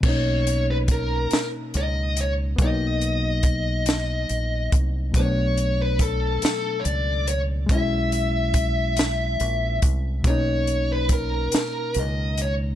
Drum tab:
CC |x-----|------|------|------|
HH |-xxxxx|xxxxxx|xxxxxx|xxxxxx|
SD |---o--|---o--|---o--|---o--|
BD |o-o---|o-o--o|o-o---|o-o--o|

CC |------|
HH |xxxxxx|
SD |---o--|
BD |o-o---|